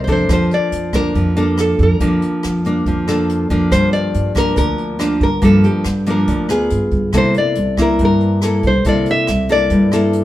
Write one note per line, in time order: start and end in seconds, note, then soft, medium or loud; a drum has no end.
0.00 0.26 C3 medium
0.00 0.10 C5 medium
0.07 0.27 F2 medium
0.07 0.89 A#3 medium
0.07 0.90 D4 medium
0.07 0.90 A4 medium
0.07 kick medium
0.07 closed hi-hat soft
0.12 0.30 C5 medium
0.29 0.48 F2 medium
0.29 1.12 F3 medium
0.29 0.51 C5 medium
0.29 kick medium
0.29 cross-stick medium
0.29 closed hi-hat soft
0.51 0.92 D5 medium
0.51 closed hi-hat soft
0.72 1.11 F2 medium
0.72 closed hi-hat soft
0.93 1.33 A#3 medium
0.93 1.33 D4 medium
0.93 1.60 A#4 medium
0.93 kick medium
0.93 cross-stick medium
0.93 closed hi-hat soft
1.15 1.75 F2 loud
1.15 1.98 F3 soft
1.15 kick soft
1.15 closed hi-hat soft
1.37 1.97 A#3 medium
1.37 1.97 D4 medium
1.37 1.97 A4 medium
1.37 closed hi-hat soft
1.57 1.80 A4 medium
1.57 cross-stick medium
1.57 closed hi-hat soft
1.79 1.98 F2 loud
1.79 kick medium
1.79 closed hi-hat soft
1.83 3.26 A#4 medium
2.00 2.20 F2 medium
2.00 2.84 F3 medium
2.00 2.61 A#3 medium
2.00 2.61 D4 medium
2.00 kick medium
2.00 closed hi-hat soft
2.22 closed hi-hat soft
2.43 2.83 F2 medium
2.43 cross-stick medium
2.43 closed hi-hat soft
2.64 3.04 A#3 medium
2.64 3.04 D4 medium
2.64 closed hi-hat soft
2.86 3.46 F2 medium
2.86 3.49 F3 medium
2.86 kick medium
2.86 closed hi-hat soft
3.07 3.47 A#3 soft
3.07 3.47 D4 medium
3.07 3.47 A4 medium
3.07 cross-stick medium
3.07 closed hi-hat soft
3.29 closed hi-hat soft
3.50 3.70 F2 medium
3.50 4.32 F3 medium
3.50 4.32 A#3 medium
3.50 4.33 D4 medium
3.50 kick soft
3.50 closed hi-hat soft
3.71 4.55 G2 medium
3.71 3.91 G2 medium
3.71 3.91 C5 loud
3.71 kick medium
3.71 cross-stick medium
3.71 closed hi-hat soft
3.93 4.32 D5 loud
3.93 closed hi-hat soft
4.14 4.54 G2 medium
4.14 closed hi-hat soft
4.35 4.96 F3 medium
4.35 4.96 A#3 medium
4.35 4.96 D4 medium
4.35 4.57 A#4 medium
4.35 kick medium
4.35 cross-stick medium
4.35 closed hi-hat soft
4.56 5.17 D2 medium
4.56 5.40 D3 medium
4.56 5.22 A#4 medium
4.56 kick medium
4.56 closed hi-hat soft
4.78 closed hi-hat soft
4.99 5.27 F3 soft
4.99 5.27 A#3 soft
4.99 5.27 D4 medium
4.99 cross-stick medium
4.99 closed hi-hat soft
5.21 5.41 G2 medium
5.21 5.44 A#4 medium
5.21 kick medium
5.21 closed hi-hat soft
5.42 6.26 G2 soft
5.42 5.62 G2 loud
5.42 5.85 F3 medium
5.42 5.85 A#3 medium
5.42 5.85 D4 medium
5.42 5.65 A4 medium
5.42 kick medium
5.42 closed hi-hat soft
5.64 6.08 G4 medium
5.64 closed hi-hat soft
5.84 6.25 G2 medium
5.84 cross-stick medium
5.84 closed hi-hat soft
6.06 6.46 F3 medium
6.06 6.46 A#3 medium
6.06 6.47 D4 medium
6.06 6.69 A#4 medium
6.06 closed hi-hat soft
6.27 6.68 D2 medium
6.27 6.69 D3 medium
6.27 kick medium
6.27 closed hi-hat soft
6.49 7.10 B3 medium
6.49 7.10 F4 medium
6.49 7.11 G#4 medium
6.49 cross-stick medium
6.49 closed hi-hat soft
6.70 6.91 G2 medium
6.70 closed hi-hat soft
6.91 7.12 G2 medium
6.91 kick medium
6.91 closed hi-hat soft
7.13 7.34 C2 loud
7.13 7.97 C3 medium
7.13 7.56 A#3 medium
7.13 7.56 E4 medium
7.13 7.57 A4 medium
7.13 kick medium
7.13 cross-stick medium
7.13 closed hi-hat soft
7.17 7.36 C5 medium
7.34 7.81 D5 medium
7.34 closed hi-hat soft
7.55 7.96 C2 medium
7.55 closed hi-hat soft
7.77 8.39 A#3 medium
7.77 8.39 E4 medium
7.77 kick soft
7.77 cross-stick medium
7.77 closed hi-hat soft
7.82 8.02 A#4 medium
7.99 8.60 G2 medium
7.99 8.84 G2 medium
7.99 kick medium
7.99 closed hi-hat soft
8.05 8.67 A#4 medium
8.20 closed hi-hat soft
8.42 8.70 A#3 soft
8.42 8.70 E4 medium
8.42 8.71 A4 medium
8.42 cross-stick medium
8.42 closed hi-hat soft
8.63 8.83 C2 medium
8.63 kick soft
8.63 closed hi-hat soft
8.67 8.85 C5 medium
8.84 9.05 C2 medium
8.84 9.69 C3 soft
8.84 9.28 A#3 medium
8.84 9.28 E4 medium
8.84 9.28 A4 medium
8.84 kick medium
8.84 closed hi-hat soft
8.88 9.07 D5 medium
9.06 closed hi-hat soft
9.11 9.52 E5 loud
9.27 9.68 C2 medium
9.27 cross-stick soft
9.27 closed hi-hat soft
9.48 9.89 A#3 medium
9.48 9.89 E4 medium
9.48 9.89 A4 medium
9.48 10.11 D5 medium
9.48 closed hi-hat soft
9.70 10.24 G2 medium
9.70 kick soft
9.70 closed hi-hat soft
9.92 10.24 A#3 medium
9.92 10.24 E4 medium
9.92 10.24 A4 medium
9.92 cross-stick medium
9.92 closed hi-hat soft
10.13 closed hi-hat soft